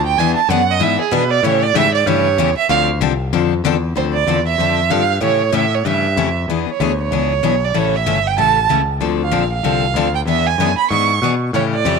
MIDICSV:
0, 0, Header, 1, 5, 480
1, 0, Start_track
1, 0, Tempo, 315623
1, 275, Time_signature, 4, 2, 24, 8
1, 18240, End_track
2, 0, Start_track
2, 0, Title_t, "Violin"
2, 0, Program_c, 0, 40
2, 96, Note_on_c, 0, 79, 95
2, 277, Note_on_c, 0, 80, 100
2, 300, Note_off_c, 0, 79, 0
2, 540, Note_off_c, 0, 80, 0
2, 549, Note_on_c, 0, 81, 89
2, 764, Note_on_c, 0, 78, 96
2, 787, Note_off_c, 0, 81, 0
2, 1082, Note_on_c, 0, 75, 99
2, 1105, Note_off_c, 0, 78, 0
2, 1263, Note_on_c, 0, 76, 98
2, 1286, Note_off_c, 0, 75, 0
2, 1530, Note_off_c, 0, 76, 0
2, 1539, Note_on_c, 0, 68, 75
2, 1704, Note_on_c, 0, 71, 83
2, 1727, Note_off_c, 0, 68, 0
2, 1986, Note_on_c, 0, 74, 101
2, 2009, Note_off_c, 0, 71, 0
2, 2187, Note_on_c, 0, 73, 91
2, 2210, Note_off_c, 0, 74, 0
2, 2477, Note_on_c, 0, 74, 106
2, 2500, Note_off_c, 0, 73, 0
2, 2673, Note_on_c, 0, 76, 122
2, 2695, Note_off_c, 0, 74, 0
2, 2957, Note_off_c, 0, 76, 0
2, 2964, Note_on_c, 0, 74, 90
2, 3148, Note_on_c, 0, 73, 89
2, 3171, Note_off_c, 0, 74, 0
2, 3908, Note_off_c, 0, 73, 0
2, 3917, Note_on_c, 0, 76, 94
2, 4089, Note_off_c, 0, 76, 0
2, 4098, Note_on_c, 0, 77, 104
2, 4271, Note_off_c, 0, 77, 0
2, 6033, Note_on_c, 0, 72, 78
2, 6159, Note_off_c, 0, 72, 0
2, 6292, Note_on_c, 0, 74, 80
2, 6744, Note_off_c, 0, 74, 0
2, 6777, Note_on_c, 0, 76, 90
2, 7465, Note_on_c, 0, 77, 95
2, 7488, Note_off_c, 0, 76, 0
2, 7940, Note_off_c, 0, 77, 0
2, 7962, Note_on_c, 0, 73, 90
2, 8429, Note_on_c, 0, 76, 91
2, 8452, Note_off_c, 0, 73, 0
2, 8745, Note_on_c, 0, 73, 80
2, 8768, Note_off_c, 0, 76, 0
2, 8940, Note_on_c, 0, 76, 89
2, 8963, Note_off_c, 0, 73, 0
2, 9690, Note_off_c, 0, 76, 0
2, 10195, Note_on_c, 0, 73, 70
2, 10621, Note_off_c, 0, 73, 0
2, 10676, Note_on_c, 0, 73, 84
2, 11632, Note_on_c, 0, 74, 78
2, 11655, Note_off_c, 0, 73, 0
2, 11830, Note_on_c, 0, 73, 85
2, 11853, Note_off_c, 0, 74, 0
2, 12107, Note_on_c, 0, 76, 87
2, 12130, Note_off_c, 0, 73, 0
2, 12582, Note_on_c, 0, 79, 91
2, 12605, Note_off_c, 0, 76, 0
2, 12758, Note_off_c, 0, 79, 0
2, 12775, Note_on_c, 0, 81, 96
2, 13208, Note_off_c, 0, 81, 0
2, 14052, Note_on_c, 0, 77, 71
2, 14473, Note_off_c, 0, 77, 0
2, 14502, Note_on_c, 0, 77, 85
2, 15390, Note_off_c, 0, 77, 0
2, 15438, Note_on_c, 0, 79, 79
2, 15524, Note_off_c, 0, 79, 0
2, 15629, Note_on_c, 0, 76, 87
2, 15918, Note_on_c, 0, 80, 84
2, 15941, Note_off_c, 0, 76, 0
2, 16390, Note_off_c, 0, 80, 0
2, 16399, Note_on_c, 0, 83, 87
2, 16576, Note_off_c, 0, 83, 0
2, 16602, Note_on_c, 0, 85, 90
2, 17044, Note_off_c, 0, 85, 0
2, 17555, Note_on_c, 0, 73, 90
2, 17685, Note_off_c, 0, 73, 0
2, 17862, Note_on_c, 0, 74, 90
2, 18240, Note_off_c, 0, 74, 0
2, 18240, End_track
3, 0, Start_track
3, 0, Title_t, "Steel-string acoustic guitar"
3, 0, Program_c, 1, 25
3, 295, Note_on_c, 1, 52, 73
3, 302, Note_on_c, 1, 62, 78
3, 304, Note_on_c, 1, 59, 77
3, 313, Note_on_c, 1, 68, 75
3, 588, Note_off_c, 1, 52, 0
3, 591, Note_off_c, 1, 62, 0
3, 592, Note_off_c, 1, 59, 0
3, 596, Note_off_c, 1, 68, 0
3, 757, Note_on_c, 1, 52, 83
3, 766, Note_on_c, 1, 62, 95
3, 767, Note_on_c, 1, 59, 101
3, 781, Note_on_c, 1, 68, 103
3, 919, Note_off_c, 1, 52, 0
3, 923, Note_off_c, 1, 62, 0
3, 924, Note_off_c, 1, 59, 0
3, 931, Note_off_c, 1, 68, 0
3, 1213, Note_on_c, 1, 52, 73
3, 1219, Note_on_c, 1, 62, 73
3, 1227, Note_on_c, 1, 59, 77
3, 1228, Note_on_c, 1, 68, 83
3, 1524, Note_off_c, 1, 52, 0
3, 1527, Note_off_c, 1, 62, 0
3, 1531, Note_off_c, 1, 59, 0
3, 1532, Note_off_c, 1, 68, 0
3, 1694, Note_on_c, 1, 52, 92
3, 1708, Note_on_c, 1, 59, 92
3, 1710, Note_on_c, 1, 62, 93
3, 1713, Note_on_c, 1, 68, 104
3, 1865, Note_off_c, 1, 52, 0
3, 1872, Note_off_c, 1, 59, 0
3, 1873, Note_off_c, 1, 62, 0
3, 1875, Note_off_c, 1, 68, 0
3, 2192, Note_on_c, 1, 52, 75
3, 2195, Note_on_c, 1, 49, 78
3, 2199, Note_on_c, 1, 61, 78
3, 2204, Note_on_c, 1, 57, 72
3, 2205, Note_on_c, 1, 67, 78
3, 2492, Note_off_c, 1, 52, 0
3, 2493, Note_off_c, 1, 49, 0
3, 2495, Note_off_c, 1, 61, 0
3, 2497, Note_off_c, 1, 57, 0
3, 2498, Note_off_c, 1, 67, 0
3, 2665, Note_on_c, 1, 49, 92
3, 2669, Note_on_c, 1, 57, 93
3, 2669, Note_on_c, 1, 61, 99
3, 2675, Note_on_c, 1, 52, 100
3, 2686, Note_on_c, 1, 67, 104
3, 2828, Note_off_c, 1, 49, 0
3, 2830, Note_off_c, 1, 57, 0
3, 2830, Note_off_c, 1, 61, 0
3, 2833, Note_off_c, 1, 52, 0
3, 2839, Note_off_c, 1, 67, 0
3, 3148, Note_on_c, 1, 49, 77
3, 3149, Note_on_c, 1, 57, 80
3, 3154, Note_on_c, 1, 52, 81
3, 3160, Note_on_c, 1, 67, 82
3, 3161, Note_on_c, 1, 61, 78
3, 3447, Note_off_c, 1, 49, 0
3, 3448, Note_off_c, 1, 57, 0
3, 3451, Note_off_c, 1, 52, 0
3, 3453, Note_off_c, 1, 67, 0
3, 3454, Note_off_c, 1, 61, 0
3, 3623, Note_on_c, 1, 49, 92
3, 3630, Note_on_c, 1, 57, 88
3, 3634, Note_on_c, 1, 52, 87
3, 3644, Note_on_c, 1, 61, 94
3, 3645, Note_on_c, 1, 67, 100
3, 3785, Note_off_c, 1, 49, 0
3, 3789, Note_off_c, 1, 57, 0
3, 3791, Note_off_c, 1, 52, 0
3, 3796, Note_off_c, 1, 61, 0
3, 3796, Note_off_c, 1, 67, 0
3, 4093, Note_on_c, 1, 50, 70
3, 4095, Note_on_c, 1, 53, 83
3, 4105, Note_on_c, 1, 60, 81
3, 4111, Note_on_c, 1, 62, 84
3, 4115, Note_on_c, 1, 69, 78
3, 4398, Note_off_c, 1, 50, 0
3, 4399, Note_off_c, 1, 53, 0
3, 4404, Note_off_c, 1, 60, 0
3, 4407, Note_off_c, 1, 62, 0
3, 4409, Note_off_c, 1, 69, 0
3, 4575, Note_on_c, 1, 50, 96
3, 4583, Note_on_c, 1, 53, 88
3, 4589, Note_on_c, 1, 62, 97
3, 4590, Note_on_c, 1, 60, 93
3, 4599, Note_on_c, 1, 69, 91
3, 4740, Note_off_c, 1, 50, 0
3, 4744, Note_off_c, 1, 53, 0
3, 4747, Note_off_c, 1, 60, 0
3, 4747, Note_off_c, 1, 62, 0
3, 4752, Note_off_c, 1, 69, 0
3, 5061, Note_on_c, 1, 53, 77
3, 5062, Note_on_c, 1, 50, 81
3, 5066, Note_on_c, 1, 60, 74
3, 5067, Note_on_c, 1, 62, 77
3, 5071, Note_on_c, 1, 69, 83
3, 5361, Note_off_c, 1, 53, 0
3, 5362, Note_off_c, 1, 50, 0
3, 5364, Note_off_c, 1, 60, 0
3, 5364, Note_off_c, 1, 62, 0
3, 5366, Note_off_c, 1, 69, 0
3, 5545, Note_on_c, 1, 50, 92
3, 5548, Note_on_c, 1, 60, 100
3, 5557, Note_on_c, 1, 53, 79
3, 5557, Note_on_c, 1, 62, 102
3, 5570, Note_on_c, 1, 69, 112
3, 5704, Note_off_c, 1, 50, 0
3, 5706, Note_off_c, 1, 60, 0
3, 5710, Note_off_c, 1, 53, 0
3, 5710, Note_off_c, 1, 62, 0
3, 5716, Note_off_c, 1, 69, 0
3, 6014, Note_on_c, 1, 50, 61
3, 6028, Note_on_c, 1, 53, 66
3, 6028, Note_on_c, 1, 60, 62
3, 6034, Note_on_c, 1, 62, 60
3, 6034, Note_on_c, 1, 69, 69
3, 6318, Note_off_c, 1, 50, 0
3, 6325, Note_off_c, 1, 53, 0
3, 6325, Note_off_c, 1, 60, 0
3, 6327, Note_off_c, 1, 69, 0
3, 6328, Note_off_c, 1, 62, 0
3, 6500, Note_on_c, 1, 50, 83
3, 6509, Note_on_c, 1, 53, 79
3, 6509, Note_on_c, 1, 60, 79
3, 6520, Note_on_c, 1, 62, 82
3, 6523, Note_on_c, 1, 69, 83
3, 6661, Note_off_c, 1, 50, 0
3, 6666, Note_off_c, 1, 53, 0
3, 6666, Note_off_c, 1, 60, 0
3, 6672, Note_off_c, 1, 62, 0
3, 6673, Note_off_c, 1, 69, 0
3, 6987, Note_on_c, 1, 53, 66
3, 6991, Note_on_c, 1, 50, 58
3, 6997, Note_on_c, 1, 62, 73
3, 6999, Note_on_c, 1, 60, 59
3, 7004, Note_on_c, 1, 69, 70
3, 7285, Note_off_c, 1, 53, 0
3, 7286, Note_off_c, 1, 50, 0
3, 7290, Note_off_c, 1, 60, 0
3, 7290, Note_off_c, 1, 62, 0
3, 7293, Note_off_c, 1, 69, 0
3, 7457, Note_on_c, 1, 50, 71
3, 7458, Note_on_c, 1, 53, 81
3, 7467, Note_on_c, 1, 60, 71
3, 7469, Note_on_c, 1, 62, 76
3, 7474, Note_on_c, 1, 69, 86
3, 7620, Note_off_c, 1, 50, 0
3, 7621, Note_off_c, 1, 53, 0
3, 7626, Note_off_c, 1, 60, 0
3, 7626, Note_off_c, 1, 62, 0
3, 7629, Note_off_c, 1, 69, 0
3, 7916, Note_on_c, 1, 49, 61
3, 7924, Note_on_c, 1, 57, 61
3, 7926, Note_on_c, 1, 52, 66
3, 7933, Note_on_c, 1, 61, 69
3, 7934, Note_on_c, 1, 67, 72
3, 8230, Note_off_c, 1, 49, 0
3, 8234, Note_off_c, 1, 57, 0
3, 8235, Note_off_c, 1, 52, 0
3, 8238, Note_off_c, 1, 61, 0
3, 8239, Note_off_c, 1, 67, 0
3, 8401, Note_on_c, 1, 49, 68
3, 8402, Note_on_c, 1, 52, 83
3, 8405, Note_on_c, 1, 57, 92
3, 8417, Note_on_c, 1, 61, 93
3, 8421, Note_on_c, 1, 67, 85
3, 8573, Note_off_c, 1, 49, 0
3, 8574, Note_off_c, 1, 52, 0
3, 8575, Note_off_c, 1, 57, 0
3, 8581, Note_off_c, 1, 61, 0
3, 8584, Note_off_c, 1, 67, 0
3, 8898, Note_on_c, 1, 49, 59
3, 8910, Note_on_c, 1, 61, 66
3, 8911, Note_on_c, 1, 52, 59
3, 8911, Note_on_c, 1, 57, 70
3, 8924, Note_on_c, 1, 67, 69
3, 9202, Note_off_c, 1, 49, 0
3, 9208, Note_off_c, 1, 52, 0
3, 9208, Note_off_c, 1, 57, 0
3, 9208, Note_off_c, 1, 61, 0
3, 9215, Note_off_c, 1, 67, 0
3, 9387, Note_on_c, 1, 49, 82
3, 9390, Note_on_c, 1, 52, 70
3, 9393, Note_on_c, 1, 57, 76
3, 9397, Note_on_c, 1, 61, 78
3, 9403, Note_on_c, 1, 67, 75
3, 9547, Note_off_c, 1, 49, 0
3, 9549, Note_off_c, 1, 52, 0
3, 9550, Note_off_c, 1, 57, 0
3, 9553, Note_off_c, 1, 61, 0
3, 9555, Note_off_c, 1, 67, 0
3, 9879, Note_on_c, 1, 52, 67
3, 9881, Note_on_c, 1, 59, 61
3, 9887, Note_on_c, 1, 62, 65
3, 9895, Note_on_c, 1, 68, 71
3, 10173, Note_off_c, 1, 52, 0
3, 10174, Note_off_c, 1, 59, 0
3, 10177, Note_off_c, 1, 62, 0
3, 10181, Note_off_c, 1, 68, 0
3, 10343, Note_on_c, 1, 52, 76
3, 10351, Note_on_c, 1, 59, 74
3, 10354, Note_on_c, 1, 62, 73
3, 10366, Note_on_c, 1, 68, 94
3, 10506, Note_off_c, 1, 52, 0
3, 10510, Note_off_c, 1, 59, 0
3, 10512, Note_off_c, 1, 62, 0
3, 10518, Note_off_c, 1, 68, 0
3, 10825, Note_on_c, 1, 52, 65
3, 10826, Note_on_c, 1, 59, 57
3, 10841, Note_on_c, 1, 68, 73
3, 10843, Note_on_c, 1, 62, 77
3, 11127, Note_off_c, 1, 52, 0
3, 11128, Note_off_c, 1, 59, 0
3, 11135, Note_off_c, 1, 68, 0
3, 11136, Note_off_c, 1, 62, 0
3, 11298, Note_on_c, 1, 52, 75
3, 11307, Note_on_c, 1, 59, 83
3, 11308, Note_on_c, 1, 62, 86
3, 11321, Note_on_c, 1, 68, 82
3, 11465, Note_off_c, 1, 52, 0
3, 11469, Note_off_c, 1, 59, 0
3, 11470, Note_off_c, 1, 62, 0
3, 11476, Note_off_c, 1, 68, 0
3, 11775, Note_on_c, 1, 52, 69
3, 11776, Note_on_c, 1, 49, 61
3, 11779, Note_on_c, 1, 57, 70
3, 11782, Note_on_c, 1, 61, 67
3, 11789, Note_on_c, 1, 69, 71
3, 12083, Note_off_c, 1, 49, 0
3, 12083, Note_off_c, 1, 52, 0
3, 12085, Note_off_c, 1, 57, 0
3, 12086, Note_off_c, 1, 61, 0
3, 12090, Note_off_c, 1, 69, 0
3, 12262, Note_on_c, 1, 49, 80
3, 12265, Note_on_c, 1, 57, 88
3, 12268, Note_on_c, 1, 52, 84
3, 12270, Note_on_c, 1, 61, 85
3, 12277, Note_on_c, 1, 69, 86
3, 12427, Note_off_c, 1, 49, 0
3, 12429, Note_off_c, 1, 57, 0
3, 12430, Note_off_c, 1, 52, 0
3, 12431, Note_off_c, 1, 61, 0
3, 12435, Note_off_c, 1, 69, 0
3, 12740, Note_on_c, 1, 49, 57
3, 12740, Note_on_c, 1, 52, 64
3, 12747, Note_on_c, 1, 57, 66
3, 12755, Note_on_c, 1, 61, 65
3, 12761, Note_on_c, 1, 69, 72
3, 13046, Note_off_c, 1, 49, 0
3, 13046, Note_off_c, 1, 52, 0
3, 13050, Note_off_c, 1, 57, 0
3, 13054, Note_off_c, 1, 61, 0
3, 13056, Note_off_c, 1, 69, 0
3, 13220, Note_on_c, 1, 49, 69
3, 13231, Note_on_c, 1, 52, 80
3, 13231, Note_on_c, 1, 57, 77
3, 13236, Note_on_c, 1, 61, 77
3, 13240, Note_on_c, 1, 69, 80
3, 13387, Note_off_c, 1, 49, 0
3, 13393, Note_off_c, 1, 52, 0
3, 13393, Note_off_c, 1, 57, 0
3, 13395, Note_off_c, 1, 61, 0
3, 13397, Note_off_c, 1, 69, 0
3, 13695, Note_on_c, 1, 50, 60
3, 13696, Note_on_c, 1, 53, 63
3, 13707, Note_on_c, 1, 60, 66
3, 13709, Note_on_c, 1, 69, 63
3, 13711, Note_on_c, 1, 62, 66
3, 14004, Note_off_c, 1, 50, 0
3, 14005, Note_off_c, 1, 53, 0
3, 14010, Note_off_c, 1, 60, 0
3, 14011, Note_off_c, 1, 69, 0
3, 14012, Note_off_c, 1, 62, 0
3, 14165, Note_on_c, 1, 53, 81
3, 14166, Note_on_c, 1, 50, 80
3, 14175, Note_on_c, 1, 69, 82
3, 14177, Note_on_c, 1, 60, 81
3, 14178, Note_on_c, 1, 62, 86
3, 14340, Note_off_c, 1, 53, 0
3, 14341, Note_off_c, 1, 50, 0
3, 14345, Note_off_c, 1, 69, 0
3, 14346, Note_off_c, 1, 60, 0
3, 14347, Note_off_c, 1, 62, 0
3, 14660, Note_on_c, 1, 50, 62
3, 14663, Note_on_c, 1, 53, 62
3, 14669, Note_on_c, 1, 60, 70
3, 14671, Note_on_c, 1, 69, 73
3, 14677, Note_on_c, 1, 62, 68
3, 14968, Note_off_c, 1, 50, 0
3, 14969, Note_off_c, 1, 53, 0
3, 14972, Note_off_c, 1, 60, 0
3, 14973, Note_off_c, 1, 69, 0
3, 14976, Note_off_c, 1, 62, 0
3, 15146, Note_on_c, 1, 53, 81
3, 15147, Note_on_c, 1, 50, 79
3, 15153, Note_on_c, 1, 60, 84
3, 15155, Note_on_c, 1, 62, 78
3, 15162, Note_on_c, 1, 69, 87
3, 15312, Note_off_c, 1, 50, 0
3, 15312, Note_off_c, 1, 53, 0
3, 15315, Note_off_c, 1, 60, 0
3, 15316, Note_off_c, 1, 62, 0
3, 15320, Note_off_c, 1, 69, 0
3, 15623, Note_on_c, 1, 52, 61
3, 15632, Note_on_c, 1, 62, 70
3, 15633, Note_on_c, 1, 59, 68
3, 15636, Note_on_c, 1, 68, 70
3, 15930, Note_off_c, 1, 52, 0
3, 15935, Note_off_c, 1, 59, 0
3, 15935, Note_off_c, 1, 62, 0
3, 15936, Note_off_c, 1, 68, 0
3, 16118, Note_on_c, 1, 59, 87
3, 16119, Note_on_c, 1, 52, 76
3, 16128, Note_on_c, 1, 68, 90
3, 16130, Note_on_c, 1, 62, 86
3, 16279, Note_off_c, 1, 52, 0
3, 16279, Note_off_c, 1, 59, 0
3, 16283, Note_off_c, 1, 68, 0
3, 16284, Note_off_c, 1, 62, 0
3, 16588, Note_on_c, 1, 52, 58
3, 16600, Note_on_c, 1, 59, 61
3, 16605, Note_on_c, 1, 62, 63
3, 16608, Note_on_c, 1, 68, 64
3, 16893, Note_off_c, 1, 52, 0
3, 16899, Note_off_c, 1, 59, 0
3, 16902, Note_off_c, 1, 62, 0
3, 16903, Note_off_c, 1, 68, 0
3, 17080, Note_on_c, 1, 52, 69
3, 17080, Note_on_c, 1, 59, 76
3, 17093, Note_on_c, 1, 68, 87
3, 17095, Note_on_c, 1, 62, 77
3, 17240, Note_off_c, 1, 59, 0
3, 17241, Note_off_c, 1, 52, 0
3, 17247, Note_off_c, 1, 68, 0
3, 17248, Note_off_c, 1, 62, 0
3, 17548, Note_on_c, 1, 49, 71
3, 17557, Note_on_c, 1, 52, 67
3, 17563, Note_on_c, 1, 57, 68
3, 17567, Note_on_c, 1, 61, 70
3, 17569, Note_on_c, 1, 67, 73
3, 17854, Note_off_c, 1, 49, 0
3, 17859, Note_off_c, 1, 52, 0
3, 17862, Note_off_c, 1, 57, 0
3, 17864, Note_off_c, 1, 61, 0
3, 17865, Note_off_c, 1, 67, 0
3, 18021, Note_on_c, 1, 49, 81
3, 18027, Note_on_c, 1, 52, 80
3, 18034, Note_on_c, 1, 57, 85
3, 18039, Note_on_c, 1, 61, 86
3, 18039, Note_on_c, 1, 67, 91
3, 18192, Note_off_c, 1, 49, 0
3, 18195, Note_off_c, 1, 52, 0
3, 18198, Note_off_c, 1, 57, 0
3, 18201, Note_off_c, 1, 61, 0
3, 18201, Note_off_c, 1, 67, 0
3, 18240, End_track
4, 0, Start_track
4, 0, Title_t, "Picked electric bass"
4, 0, Program_c, 2, 34
4, 0, Note_on_c, 2, 38, 91
4, 255, Note_off_c, 2, 38, 0
4, 269, Note_on_c, 2, 40, 88
4, 541, Note_off_c, 2, 40, 0
4, 741, Note_on_c, 2, 42, 100
4, 1210, Note_off_c, 2, 42, 0
4, 1220, Note_on_c, 2, 44, 90
4, 1494, Note_off_c, 2, 44, 0
4, 1700, Note_on_c, 2, 47, 91
4, 2164, Note_off_c, 2, 47, 0
4, 2173, Note_on_c, 2, 45, 83
4, 2643, Note_off_c, 2, 45, 0
4, 2652, Note_on_c, 2, 44, 92
4, 3121, Note_off_c, 2, 44, 0
4, 3136, Note_on_c, 2, 43, 100
4, 3602, Note_off_c, 2, 43, 0
4, 3615, Note_on_c, 2, 40, 97
4, 3886, Note_off_c, 2, 40, 0
4, 4095, Note_on_c, 2, 38, 93
4, 4560, Note_off_c, 2, 38, 0
4, 4574, Note_on_c, 2, 36, 106
4, 5039, Note_off_c, 2, 36, 0
4, 5061, Note_on_c, 2, 41, 95
4, 5523, Note_off_c, 2, 41, 0
4, 5533, Note_on_c, 2, 40, 94
4, 5999, Note_off_c, 2, 40, 0
4, 6019, Note_on_c, 2, 38, 77
4, 6482, Note_off_c, 2, 38, 0
4, 6488, Note_on_c, 2, 40, 79
4, 6957, Note_off_c, 2, 40, 0
4, 6968, Note_on_c, 2, 41, 77
4, 7437, Note_off_c, 2, 41, 0
4, 7454, Note_on_c, 2, 43, 81
4, 7920, Note_off_c, 2, 43, 0
4, 7929, Note_on_c, 2, 45, 74
4, 8398, Note_off_c, 2, 45, 0
4, 8407, Note_on_c, 2, 45, 80
4, 8878, Note_off_c, 2, 45, 0
4, 8896, Note_on_c, 2, 43, 73
4, 9363, Note_off_c, 2, 43, 0
4, 9376, Note_on_c, 2, 41, 79
4, 9844, Note_off_c, 2, 41, 0
4, 9854, Note_on_c, 2, 40, 74
4, 10127, Note_off_c, 2, 40, 0
4, 10341, Note_on_c, 2, 38, 85
4, 10803, Note_off_c, 2, 38, 0
4, 10812, Note_on_c, 2, 37, 78
4, 11283, Note_off_c, 2, 37, 0
4, 11302, Note_on_c, 2, 35, 80
4, 11768, Note_off_c, 2, 35, 0
4, 11777, Note_on_c, 2, 33, 72
4, 12246, Note_off_c, 2, 33, 0
4, 12261, Note_on_c, 2, 31, 90
4, 12728, Note_off_c, 2, 31, 0
4, 12743, Note_on_c, 2, 33, 81
4, 13210, Note_off_c, 2, 33, 0
4, 13228, Note_on_c, 2, 37, 81
4, 13693, Note_off_c, 2, 37, 0
4, 13699, Note_on_c, 2, 38, 77
4, 14168, Note_off_c, 2, 38, 0
4, 14175, Note_on_c, 2, 34, 81
4, 14642, Note_off_c, 2, 34, 0
4, 14651, Note_on_c, 2, 36, 80
4, 15109, Note_off_c, 2, 36, 0
4, 15118, Note_on_c, 2, 38, 81
4, 15587, Note_off_c, 2, 38, 0
4, 15596, Note_on_c, 2, 40, 77
4, 16078, Note_off_c, 2, 40, 0
4, 16093, Note_on_c, 2, 42, 77
4, 16371, Note_off_c, 2, 42, 0
4, 16584, Note_on_c, 2, 44, 78
4, 17054, Note_off_c, 2, 44, 0
4, 17061, Note_on_c, 2, 47, 85
4, 17533, Note_off_c, 2, 47, 0
4, 17540, Note_on_c, 2, 45, 80
4, 18012, Note_off_c, 2, 45, 0
4, 18021, Note_on_c, 2, 41, 81
4, 18240, Note_off_c, 2, 41, 0
4, 18240, End_track
5, 0, Start_track
5, 0, Title_t, "Muted picked electric bass strokes"
5, 565, Note_on_c, 9, 29, 43
5, 718, Note_off_c, 9, 29, 0
5, 1516, Note_on_c, 9, 29, 39
5, 1668, Note_off_c, 9, 29, 0
5, 3901, Note_on_c, 9, 29, 46
5, 4053, Note_off_c, 9, 29, 0
5, 10152, Note_on_c, 9, 29, 37
5, 10304, Note_off_c, 9, 29, 0
5, 16380, Note_on_c, 9, 29, 39
5, 16532, Note_off_c, 9, 29, 0
5, 18240, End_track
0, 0, End_of_file